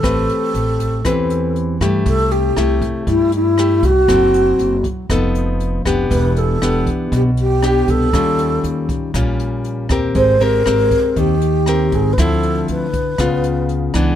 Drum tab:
HH |xxxxxxxx|xxxxxxxx|xxxxxxxx|xxxxxxxx|
SD |r---r--r|--r---r-|r---r--r|--r---r-|
BD |o--oo--o|o--oo--o|o--oo--o|o--oo--o|

HH |xxxxxxxx|xxxxxxxx|xxxxxxxx|
SD |r---r--r|--r---r-|r---r--r|
BD |o--oo--o|o--oo--o|o--oo--o|